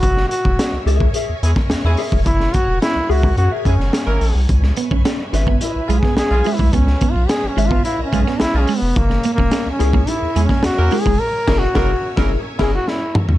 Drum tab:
CC |----------------|----------------|----------------|----------------|
HH |x-x-x-x-x-x-x-o-|x-x-x-o-x-x-x-o-|x-x-x-x-x-x-x-o-|x-x-x-x-x-x-x-o-|
SD |-o--o------oo---|-o--o------oo---|-o--o-o----oo---|-o--o------oo---|
T2 |----------------|----------------|----------------|----------------|
FT |----------------|----------------|----------------|----------------|
BD |o--o---o---o---o|o-o----o--o-----|o--o---o---o---o|o-o----o--o-----|

CC |----------------|--x-------x-----|
HH |x-x-x-x-x-x-x-o-|----------------|
SD |-o--o-o----oo---|--o-o--o--o-o---|
T2 |----------------|--------------o-|
FT |----------------|---------------o|
BD |o--o---o---o---o|--o-o--o--o-----|